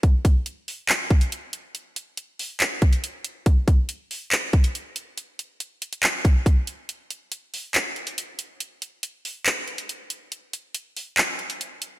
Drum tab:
HH |x-x-x-o-x-xxx-x-|x-x-x-o-x-xxx-x-|x-x-x-o-x-xxx-x-|x-x-x-xxx-x-x-x-|
CP |--------x-------|--------x-------|--------x-------|--------x-------|
BD |o-o-------o-----|----------o-----|o-o-------o-----|----------o-o---|

HH |x-x-x-o-x-xxx-x-|x-x-x-o-x-xxx-x-|x-x-x-o-x-xxx-x-|
CP |--------x-------|--------x-------|--------x-------|
BD |----------------|----------------|----------------|